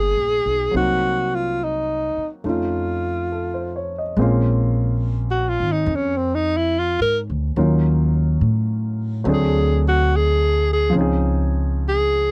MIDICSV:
0, 0, Header, 1, 5, 480
1, 0, Start_track
1, 0, Key_signature, -5, "minor"
1, 0, Tempo, 855920
1, 411, Time_signature, 4, 2, 24, 8
1, 3294, Tempo, 843882
1, 6957, End_track
2, 0, Start_track
2, 0, Title_t, "Alto saxophone"
2, 0, Program_c, 0, 65
2, 0, Note_on_c, 0, 68, 87
2, 419, Note_off_c, 0, 68, 0
2, 430, Note_on_c, 0, 66, 85
2, 755, Note_on_c, 0, 65, 72
2, 764, Note_off_c, 0, 66, 0
2, 919, Note_on_c, 0, 63, 69
2, 928, Note_off_c, 0, 65, 0
2, 1288, Note_off_c, 0, 63, 0
2, 1396, Note_on_c, 0, 65, 65
2, 2177, Note_off_c, 0, 65, 0
2, 2978, Note_on_c, 0, 66, 67
2, 3077, Note_on_c, 0, 65, 72
2, 3085, Note_off_c, 0, 66, 0
2, 3210, Note_on_c, 0, 63, 64
2, 3219, Note_off_c, 0, 65, 0
2, 3340, Note_on_c, 0, 61, 65
2, 3348, Note_off_c, 0, 63, 0
2, 3462, Note_on_c, 0, 60, 62
2, 3471, Note_off_c, 0, 61, 0
2, 3563, Note_on_c, 0, 63, 69
2, 3571, Note_off_c, 0, 60, 0
2, 3691, Note_on_c, 0, 64, 74
2, 3699, Note_off_c, 0, 63, 0
2, 3814, Note_on_c, 0, 65, 70
2, 3823, Note_off_c, 0, 64, 0
2, 3940, Note_off_c, 0, 65, 0
2, 3944, Note_on_c, 0, 70, 84
2, 4041, Note_off_c, 0, 70, 0
2, 5262, Note_on_c, 0, 68, 69
2, 5545, Note_off_c, 0, 68, 0
2, 5575, Note_on_c, 0, 66, 82
2, 5733, Note_on_c, 0, 68, 74
2, 5741, Note_off_c, 0, 66, 0
2, 6042, Note_off_c, 0, 68, 0
2, 6055, Note_on_c, 0, 68, 80
2, 6182, Note_off_c, 0, 68, 0
2, 6712, Note_on_c, 0, 68, 83
2, 6957, Note_off_c, 0, 68, 0
2, 6957, End_track
3, 0, Start_track
3, 0, Title_t, "Grand piano"
3, 0, Program_c, 1, 0
3, 0, Control_c, 1, 64, 127
3, 0, Note_on_c, 1, 55, 40
3, 0, Note_on_c, 1, 58, 40
3, 0, Note_on_c, 1, 59, 39
3, 0, Note_on_c, 1, 63, 37
3, 0, Note_on_c, 1, 65, 45
3, 400, Note_off_c, 1, 58, 0
3, 400, Note_on_c, 1, 54, 47
3, 408, Note_on_c, 1, 58, 37
3, 413, Note_off_c, 1, 55, 0
3, 415, Note_off_c, 1, 59, 0
3, 415, Note_off_c, 1, 63, 0
3, 416, Note_off_c, 1, 65, 0
3, 416, Note_on_c, 1, 60, 41
3, 419, Control_c, 1, 64, 0
3, 423, Note_on_c, 1, 63, 39
3, 426, Note_on_c, 1, 66, 50
3, 526, Control_c, 1, 64, 127
3, 1364, Note_off_c, 1, 54, 0
3, 1368, Note_off_c, 1, 58, 0
3, 1368, Note_off_c, 1, 63, 0
3, 1369, Note_on_c, 1, 57, 42
3, 1372, Note_off_c, 1, 60, 0
3, 1376, Note_on_c, 1, 61, 35
3, 1376, Note_on_c, 1, 63, 34
3, 1377, Note_off_c, 1, 66, 0
3, 1377, Control_c, 1, 64, 0
3, 1381, Note_on_c, 1, 65, 45
3, 1458, Control_c, 1, 64, 127
3, 1862, Note_on_c, 1, 69, 35
3, 1985, Note_on_c, 1, 72, 36
3, 2090, Note_off_c, 1, 69, 0
3, 2108, Note_on_c, 1, 73, 40
3, 2191, Note_off_c, 1, 72, 0
3, 2234, Note_on_c, 1, 75, 39
3, 2251, Note_off_c, 1, 73, 0
3, 2337, Note_on_c, 1, 56, 55
3, 2338, Note_off_c, 1, 57, 0
3, 2341, Note_off_c, 1, 61, 0
3, 2342, Note_off_c, 1, 63, 0
3, 2344, Note_off_c, 1, 65, 0
3, 2345, Note_on_c, 1, 58, 48
3, 2347, Control_c, 1, 64, 0
3, 2351, Note_on_c, 1, 60, 45
3, 2360, Note_on_c, 1, 61, 53
3, 2363, Note_on_c, 1, 65, 59
3, 2394, Note_off_c, 1, 75, 0
3, 2460, Control_c, 1, 64, 127
3, 4251, Note_off_c, 1, 61, 0
3, 4255, Note_off_c, 1, 56, 0
3, 4258, Note_off_c, 1, 65, 0
3, 4258, Note_on_c, 1, 54, 51
3, 4260, Note_off_c, 1, 58, 0
3, 4260, Note_on_c, 1, 61, 49
3, 4260, Note_on_c, 1, 70, 48
3, 4262, Note_off_c, 1, 60, 0
3, 4262, Control_c, 1, 64, 0
3, 4264, Note_on_c, 1, 63, 46
3, 4267, Note_on_c, 1, 65, 53
3, 4367, Control_c, 1, 64, 127
3, 5201, Note_off_c, 1, 54, 0
3, 5210, Note_on_c, 1, 54, 55
3, 5215, Note_on_c, 1, 57, 48
3, 5216, Note_off_c, 1, 70, 0
3, 5217, Note_off_c, 1, 61, 0
3, 5219, Note_off_c, 1, 63, 0
3, 5220, Note_off_c, 1, 65, 0
3, 5222, Control_c, 1, 64, 0
3, 5224, Note_on_c, 1, 60, 49
3, 5229, Note_on_c, 1, 62, 49
3, 5237, Note_on_c, 1, 68, 58
3, 5308, Control_c, 1, 64, 127
3, 6151, Note_on_c, 1, 53, 55
3, 6160, Note_off_c, 1, 60, 0
3, 6168, Note_on_c, 1, 60, 51
3, 6173, Note_off_c, 1, 54, 0
3, 6175, Note_off_c, 1, 57, 0
3, 6182, Note_off_c, 1, 62, 0
3, 6183, Control_c, 1, 64, 0
3, 6185, Note_on_c, 1, 61, 52
3, 6186, Note_off_c, 1, 68, 0
3, 6196, Note_on_c, 1, 63, 49
3, 6214, Note_on_c, 1, 68, 61
3, 6265, Control_c, 1, 64, 127
3, 6957, Note_off_c, 1, 53, 0
3, 6957, Note_off_c, 1, 60, 0
3, 6957, Note_off_c, 1, 61, 0
3, 6957, Note_off_c, 1, 63, 0
3, 6957, Note_off_c, 1, 68, 0
3, 6957, End_track
4, 0, Start_track
4, 0, Title_t, "Upright bass"
4, 0, Program_c, 2, 32
4, 0, Note_on_c, 2, 31, 71
4, 71, Note_off_c, 2, 31, 0
4, 96, Note_on_c, 2, 34, 50
4, 242, Note_off_c, 2, 34, 0
4, 255, Note_on_c, 2, 35, 54
4, 401, Note_off_c, 2, 35, 0
4, 414, Note_on_c, 2, 36, 64
4, 1196, Note_off_c, 2, 36, 0
4, 1369, Note_on_c, 2, 41, 66
4, 2316, Note_off_c, 2, 41, 0
4, 2336, Note_on_c, 2, 34, 75
4, 3118, Note_off_c, 2, 34, 0
4, 3140, Note_on_c, 2, 32, 60
4, 3282, Note_off_c, 2, 32, 0
4, 3288, Note_on_c, 2, 41, 80
4, 3910, Note_off_c, 2, 41, 0
4, 3936, Note_on_c, 2, 44, 55
4, 4085, Note_off_c, 2, 44, 0
4, 4103, Note_on_c, 2, 38, 63
4, 4249, Note_off_c, 2, 38, 0
4, 4255, Note_on_c, 2, 39, 80
4, 4713, Note_off_c, 2, 39, 0
4, 4737, Note_on_c, 2, 45, 72
4, 5193, Note_off_c, 2, 45, 0
4, 5215, Note_on_c, 2, 38, 90
4, 6153, Note_off_c, 2, 38, 0
4, 6175, Note_on_c, 2, 37, 77
4, 6957, Note_off_c, 2, 37, 0
4, 6957, End_track
5, 0, Start_track
5, 0, Title_t, "Muted upright bass strokes"
5, 1216, Note_on_c, 9, 29, 30
5, 1272, Note_off_c, 9, 29, 0
5, 6957, End_track
0, 0, End_of_file